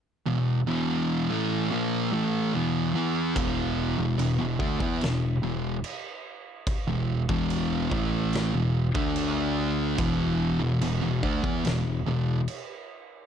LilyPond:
<<
  \new Staff \with { instrumentName = "Distorted electric guitar" } { \clef bass \time 4/4 \key d \mixolydian \tempo 4 = 72 r16 <e, b,>8 <e, b, e>8. <a, e a>8 <ais, f ais>8 <a, e a>8 <e, b, e>8 <e b e'>8 | <e, b, e>8. <e, b,>16 <e, b,>16 <e, b,>16 <d a>16 <e b>16 <e, b,>8 <e, b,>8 r4 | r16 <e, b,>8 <e, b, e>8. <a, e a>8. <e, b,>8 <d a d'>4~ <d a d'>16 | <e, b, e>8. <e, b,>16 <e, b,>16 <e, b,>16 <d a>16 <e b>16 <e, b,>8 <e, b,>8 r4 | }
  \new Staff \with { instrumentName = "Distorted electric guitar" } { \clef bass \time 4/4 \key d \mixolydian r16 <e, b,>8 <e, b, e>8. <a, e a>8 <ais, f ais>8 <a, e a>8 <e, b, e>8 <e b e'>8 | <e, b, e>8. <e, b,>16 <e, b,>16 <e, b,>16 <d a>16 <e b>16 <e, b,>8 <e, b,>8 r4 | r16 <e, b,>8 <e, b, e>8. <a, e a>8. <e, b,>8 <d a d'>4~ <d a d'>16 | <e, b, e>8. <e, b,>16 <e, b,>16 <e, b,>16 <d a>16 <e b>16 <e, b,>8 <e, b,>8 r4 | }
  \new Staff \with { instrumentName = "Picked electric bass" } { \clef bass \time 4/4 \key d \mixolydian r1 | e,,8. e,,16 e,,16 e,,16 d,16 e,16 e,,8 e,,8 r4 | r16 e,,8 e,,8. a,,8. e,,8 d,4~ d,16 | e,,8. e,,16 e,,16 e,,16 d,16 e,16 e,,8 e,,8 r4 | }
  \new DrumStaff \with { instrumentName = "Drums" } \drummode { \time 4/4 r4 r4 r4 r4 | <cymc bd>4 cymc8 bd16 bd16 <cymc sn>4 cymc4 | <cymc bd>8. bd16 cymc8 bd8 <cymc sn>8. bd16 cymc4 | <cymc bd>4 cymc8 bd16 bd16 <cymc sn>4 cymc4 | }
>>